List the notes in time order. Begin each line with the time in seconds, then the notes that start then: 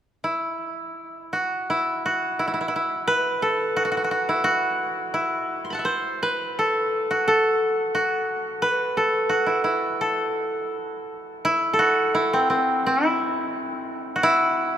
0.24 E4
1.33 F#4
1.70 E4
2.06 F#4
2.39 E4
2.48 E4
2.54 E4
2.61 E4
2.68 E4
2.76 E4
3.07 B4
3.42 A4
3.76 F#4
3.85 F#4
3.92 F#4
3.97 F#4
4.04 F#4
4.11 F#4
4.29 E4
4.44 F#4
5.14 E4
5.65 C6
5.70 A5 B5
5.75 F#5
5.79 E5
5.85 C5
6.23 B4
6.59 A4
7.11 F#4
7.28 A4
7.95 F#4
8.62 B4
8.97 A4
9.29 F#4
9.46 E4
9.64 E4
10.01 A4
11.45 E4
11.73 A4
11.79 F#4
12.15 E4
12.33 C4
12.50 C4
12.86 E4
14.16 F#4
14.23 E4